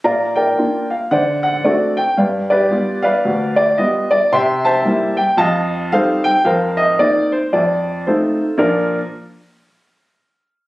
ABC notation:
X:1
M:4/4
L:1/8
Q:"Swing" 1/4=112
K:Bb
V:1 name="Upright piano"
[dfb] [Bdg]2 f [cd^f] f [^FAd] g | [=Bdf] [GBd]2 [Bdf]2 d e d | [=egc'] [cea]2 g [_efa]2 [Acf] g | [Bcf] e d c d2 [FAc]2 |
[B,,F,DFBd] z6 z |]
V:2 name="Upright piano"
B,,2 [B,DF]2 D,2 [A,CD]2 | G,,2 [G,=B,F]2 D,,2 [G,B,F]2 | C,2 [G,B,=E]2 F,,2 [G,C_E]2 | F,,2 [B,CE]2 F,,2 [A,CE]2 |
z8 |]